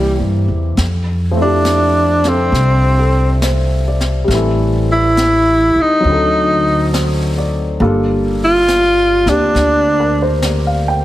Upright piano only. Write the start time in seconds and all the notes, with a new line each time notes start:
Already playing: E3 A#3 C4 G4
1.31 F3 A3
1.37 C4 E4
1.43 G4
2.24 C4 D4 F4 A4
2.99 A4
3.43 C5
3.88 D5
4.24 G3 A3
4.31 E3 C4
4.36 A4
6.00 F#3 C4
6.06 D3 D#4
6.12 A4
6.94 C5
7.38 D5
7.80 G3 A#3 D4 F4 A4
9.26 A#3 C4 D4 G4
10.00 A#4
10.22 C5
10.44 D5
10.67 F5
10.88 G5